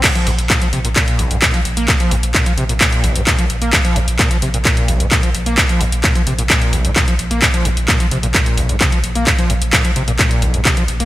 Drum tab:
CC |x---------------|----------------|----------------|----------------|
HH |xxoxxxoxxxoxxxox|xxoxxxoxxxoxxxox|xxoxxxoxxxoxxxox|xxoxxxoxxxoxxxox|
CP |x---x---x---x---|x---x---x---x---|x---x---x---x---|x---x---x---x---|
BD |o---o---o---o---|o---o---o---o---|o---o---o---o---|o---o---o---o---|

CC |----------------|----------------|
HH |xxoxxxoxxxoxxxox|xxoxxxoxxxoxxxox|
CP |x---x---x---x---|x---x---x---x---|
BD |o---o---o---o---|o---o---o---o---|